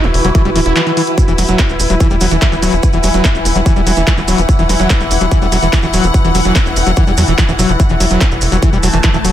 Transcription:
Already playing: E3 E4 F#4 B4
0.04 E1 E3, closed hi-hat
0.14 E1, open hi-hat
0.25 E1 F#3, closed hi-hat
0.35 E3, kick, closed hi-hat
0.45 E1 G3, closed hi-hat
0.56 D1 E3, open hi-hat
0.66 E1 E4, closed hi-hat
0.76 E3, clap, closed hi-hat
0.87 E3, closed hi-hat
0.97 E3, open hi-hat
1.07 closed hi-hat
1.18 E3 E4, kick, closed hi-hat, maracas
1.28 E1 E3, closed hi-hat, maracas
1.38 E1 F#3, open hi-hat, maracas
1.48 E1 F#3, closed hi-hat, maracas
1.59 E4, kick, clap, closed hi-hat, maracas
1.69 E1, closed hi-hat, maracas
1.80 E1, open hi-hat, maracas
1.90 E1 F#3, closed hi-hat, maracas
2.00 E3, kick, closed hi-hat, maracas
2.10 E1 G3, closed hi-hat, maracas
2.20 E1 F#3 F#5, open hi-hat, maracas
2.31 E1 E3, closed hi-hat, maracas
2.41 E3, kick, clap, closed hi-hat, maracas
2.52 E1 E3, closed hi-hat, maracas
2.62 D1 F#3, open hi-hat, maracas
2.73 E1 E3, closed hi-hat, maracas
2.83 kick, closed hi-hat, maracas
2.93 E1 E3, closed hi-hat, maracas
3.03 E1 F#3, open hi-hat, maracas
3.14 E1 F#3, closed hi-hat, maracas
3.25 E4, kick, clap, closed hi-hat, maracas
3.35 E1, closed hi-hat, maracas
3.45 E1, open hi-hat, maracas
3.56 E1 F#3, closed hi-hat, maracas
3.66 E3, kick, closed hi-hat, maracas
3.76 E1 G3, closed hi-hat, maracas
3.87 E1 F#3, open hi-hat, maracas
3.97 E1 E3, closed hi-hat, maracas
4.07 E3, kick, clap, closed hi-hat, maracas
4.18 E1 E3, closed hi-hat, maracas
4.28 D1 F#3, open hi-hat, maracas
4.38 E1 E3, closed hi-hat, maracas
4.49 kick, closed hi-hat, maracas
4.59 E1 E3, closed hi-hat, maracas
4.69 E1 F#3, open hi-hat, maracas
4.80 E1 F#3, closed hi-hat, maracas
4.90 E4, kick, clap, closed hi-hat, maracas
5.00 E1, closed hi-hat, maracas
5.11 E1, open hi-hat, maracas
5.21 E1 F#3, closed hi-hat, maracas
5.31 E3, kick, closed hi-hat, maracas
5.42 E1 G3, closed hi-hat, maracas
5.52 E1 F#3, open hi-hat, maracas
5.62 E1 E3, closed hi-hat, maracas
5.73 E3, kick, clap, closed hi-hat, maracas
5.82 E1 E3, closed hi-hat, maracas
5.93 D1 F#3, open hi-hat, maracas
6.04 E1 E3, closed hi-hat, maracas
6.14 kick, closed hi-hat, maracas
6.24 E1 E3, closed hi-hat, maracas
6.35 E1 F#3, open hi-hat, maracas
6.45 E1 F#3, closed hi-hat, maracas
6.56 E4, kick, clap, closed hi-hat, maracas
6.66 E1, closed hi-hat, maracas
6.76 E1, open hi-hat, maracas
6.87 E1 F#3, closed hi-hat, maracas
6.96 E3, kick, closed hi-hat, maracas
7.07 E1 G3, closed hi-hat, maracas
7.17 E2 F#3, open hi-hat, maracas
7.28 E1 E3, closed hi-hat, maracas
7.38 E3, kick, clap, closed hi-hat, maracas
7.49 E1 E3, closed hi-hat, maracas
7.59 E1 F#3, open hi-hat, maracas
7.69 E1 E3, closed hi-hat, maracas
7.80 E3 A3, kick, closed hi-hat, maracas
7.89 E1 E3, closed hi-hat, maracas
8.00 E1 F#3, open hi-hat, maracas
8.11 E1 F#3, closed hi-hat, maracas
8.21 E4, kick, clap, closed hi-hat, maracas
8.31 E1, closed hi-hat, maracas
8.41 E1, open hi-hat, maracas
8.52 E1 F#3, closed hi-hat, maracas
8.62 E3, kick, closed hi-hat, maracas
8.73 E1 G3, closed hi-hat, maracas
8.83 E1 F#3 A5, open hi-hat, maracas
8.93 E1 E3, closed hi-hat, maracas
9.03 E3, kick, clap, closed hi-hat, maracas
9.14 E1 E3, closed hi-hat, maracas
9.25 D1 F#3, open hi-hat, maracas

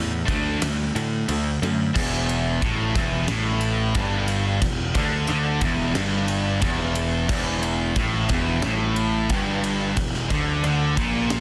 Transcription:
Already playing: E2 A2 E3
0.28 D2 D3 A3 D4, kick, ride
0.62 D2 D3 A3, snare, ride
0.95 A2 D3 A3, ride
1.29 D2 D3 A3, ride
1.62 F#2 D3 A3, ride
1.96 E1 E2, kick, crash
2.29 ride
2.62 A1 A2, kick, ride
2.95 E1 E2, kick, ride
3.28 A1 A2, snare, ride
3.61 ride
3.95 G1 G2, kick, ride
4.28 ride
4.62 E1 E2, kick, ride
4.95 D2 D3, kick, ride
5.27 D2 D3, ride
5.61 E1 E2, kick, ride
5.95 G1 G2, snare, ride
6.28 ride
6.62 E1 E2, kick, ride
6.95 ride
7.29 E1 E2, kick, crash
7.63 ride
7.96 A1 A2, kick, ride
8.29 E1 E2, kick, ride
8.62 A1 A2, snare, ride
8.96 ride
9.29 G1 G2, kick, ride
9.64 ride
9.97 E1 E2, kick, ride
10.14 snare
10.30 D2 D3, kick, ride
10.64 D2 D3, ride
10.97 A#1 A#2, kick, ride
11.30 snare, ride

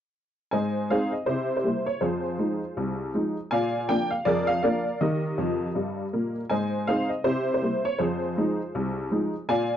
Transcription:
0.51 G#2 C5 D#5 G#5
0.90 G#3 C4 D#4 G#4 C5 F5
1.12 D#5
1.26 C3 E4 G4 C5
1.57 C5
1.64 G3 A#3 E4
1.86 C#5
2.01 F2 F4 G#4 C5
2.39 F3 G#3 D#4
2.77 C2
3.14 F3 G#3 D#4
3.51 A#2 D5 F5 G#5
3.89 F3 A#3 D4 G5
4.11 F5
4.25 F2 G#4 A#4 D5
4.47 F5
4.63 F3 A#3 D4 A#4 D5 F5
5.01 D#3 G4 A#4 D#5
5.38 F2 F3
5.75 G2 G3
6.13 A#2 A#3
6.50 G#2 C5 D#5 G#5
6.87 G#3 C4 D#4 G#4 C5 F5
7.09 D#5
7.24 C3 E4 G4 C5
7.54 C5
7.62 G3 A#3 E4
7.85 C#5
7.99 F2 F4 G#4 C5
8.37 F3 G#3 D#4
8.75 C2
9.11 F3 G#3 D#4
9.49 A#2 D5 F5 G#5

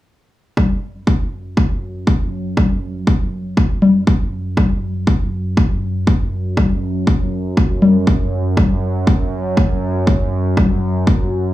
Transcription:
0.57 F#2, kick, low conga
1.07 kick
1.57 kick
2.07 kick
2.57 kick, low conga
3.07 kick
3.57 kick
3.82 low conga
4.07 kick
4.57 kick, low conga
5.07 kick
5.57 kick
6.07 kick
6.57 kick, low conga
7.07 kick
7.57 kick
7.82 low conga
8.07 kick
8.57 kick, low conga
9.07 kick
9.57 kick
10.07 kick
10.57 kick, low conga
11.07 kick

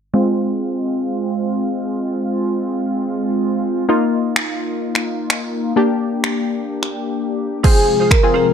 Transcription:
0.14 G#3 C4 F4
3.89 A#3 D#4 F4
4.36 finger snap
4.95 finger snap
5.30 finger snap
5.76 A#3 D4 G4
6.24 finger snap
6.83 finger snap
7.64 C3 F3 G#3 C4 F4 G#4 C5, kick, crash
7.87 muted clean electric guitar stroke
8.00 F4 G#4 C5
8.11 A#4, finger snap, kick
8.23 C4 F4 G#4, muted clean electric guitar stroke
8.34 F4 G#4 C5
8.47 muted clean electric guitar stroke

